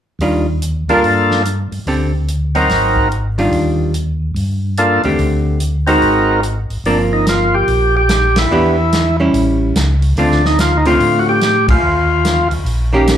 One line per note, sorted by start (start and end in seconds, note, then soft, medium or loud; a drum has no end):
0.19 0.84 D#2 medium
0.19 0.45 D#3 soft
0.19 0.45 G3 soft
0.19 0.45 D4 soft
0.19 0.46 F4 soft
0.19 open hi-hat soft
0.62 closed hi-hat soft
0.88 0.96 D#2 soft
0.88 1.03 G3 soft
0.88 1.43 A#3 medium
0.88 1.43 D4 medium
0.88 1.03 D4 soft
0.88 1.43 F4 soft
0.88 1.03 F4 soft
0.88 1.43 A4 medium
0.88 1.03 A#4 medium
0.88 open hi-hat soft
1.03 1.68 G2 medium
1.03 open hi-hat soft
1.31 snare soft
1.45 closed hi-hat soft
1.72 1.79 G2 soft
1.72 open hi-hat soft
1.86 2.65 D2 medium
1.86 2.11 D3 soft
1.86 2.11 C4 soft
1.86 2.12 G4 soft
1.86 2.12 A4 soft
1.86 open hi-hat soft
2.28 closed hi-hat soft
2.55 3.09 F#3 soft
2.55 3.08 C4 medium
2.55 3.09 C4 soft
2.55 3.09 D#4 soft
2.55 3.09 D#4 medium
2.55 3.09 F#4 soft
2.55 3.09 A#4 medium
2.55 open hi-hat soft
2.69 3.49 G#1 medium
2.69 snare soft
2.69 open hi-hat soft
2.97 kick soft
3.12 closed hi-hat soft
3.38 3.91 D#3 soft
3.38 3.92 G3 medium
3.38 3.92 D4 soft
3.38 3.92 F4 medium
3.38 open hi-hat soft
3.51 4.31 D#2 medium
3.51 open hi-hat soft
3.94 closed hi-hat soft
4.35 5.00 G2 medium
4.35 open hi-hat soft
4.77 5.02 A#3 soft
4.77 5.02 D4 soft
4.77 5.02 F4 soft
4.77 5.02 A4 soft
4.77 closed hi-hat soft
5.03 5.18 D#2 medium
5.03 5.58 D3 soft
5.03 5.58 A3 medium
5.03 5.58 C4 soft
5.03 5.58 G4 medium
5.03 open hi-hat soft
5.19 5.98 D2 medium
5.19 open hi-hat soft
5.60 closed hi-hat soft
5.87 6.41 G#3 soft
5.87 6.40 C4 medium
5.87 6.41 D#4 medium
5.87 6.41 D#4 soft
5.87 6.41 F#4 medium
5.87 6.41 F#4 soft
5.87 6.41 A#4 medium
5.87 6.41 C5 medium
5.87 open hi-hat soft
6.02 6.66 G#1 medium
6.02 open hi-hat soft
6.43 closed hi-hat soft
6.70 6.77 G#1 soft
6.70 open hi-hat soft
6.84 7.63 G1 medium
6.84 8.01 F3 medium
6.84 8.01 A#3 medium
6.84 8.02 C4 medium
6.84 6.98 D4 medium
6.84 open hi-hat soft
7.13 7.26 D#4 medium
7.26 7.55 F4 medium
7.26 snare medium
7.26 closed hi-hat soft
7.55 7.96 G4 medium
7.67 8.47 A#1 medium
7.67 open hi-hat soft
7.97 8.38 G4 medium
8.09 snare medium
8.09 closed hi-hat soft
8.36 9.17 E4 medium
8.36 snare medium
8.36 ride medium
8.51 9.30 E2 medium
8.51 8.75 E3 medium
8.51 8.76 B3 medium
8.51 8.76 D4 medium
8.51 8.76 G4 medium
8.92 snare medium
8.92 closed hi-hat soft
9.20 9.73 G3 medium
9.20 9.73 C#4 medium
9.20 9.73 E4 medium
9.33 9.72 A1 medium
9.33 open hi-hat soft
9.74 10.14 C#2 medium
9.74 snare medium
9.74 closed hi-hat soft
10.02 open hi-hat soft
10.16 10.96 D2 medium
10.16 10.42 D3 medium
10.16 10.42 A3 soft
10.16 10.42 C4 medium
10.16 10.46 D4 medium
10.16 10.42 F4 medium
10.16 open hi-hat soft
10.31 snare soft
10.45 10.59 D#4 medium
10.45 snare soft
10.59 10.78 F4 medium
10.59 snare medium
10.59 closed hi-hat soft
10.77 10.86 D#4 medium
10.85 11.39 D3 medium
10.85 11.39 A3 medium
10.85 11.39 C4 medium
10.85 11.20 F4 medium
10.85 11.39 F4 medium
10.85 open hi-hat soft
10.99 11.79 A2 medium
10.99 open hi-hat soft
11.19 11.28 F#4 medium
11.29 11.67 G4 loud
11.41 snare medium
11.41 closed hi-hat soft
11.68 12.48 F4 medium
11.68 kick medium
11.68 ride medium
11.83 12.47 D#2 medium
12.25 snare medium
12.25 closed hi-hat soft
12.51 12.59 D#2 soft
12.51 open hi-hat soft
12.65 13.18 A#1 medium
12.65 open hi-hat soft
12.93 13.18 D#3 medium
12.93 13.18 A#3 medium
12.93 13.18 C#4 medium
12.93 13.18 G4 medium
13.07 snare medium
13.07 closed hi-hat soft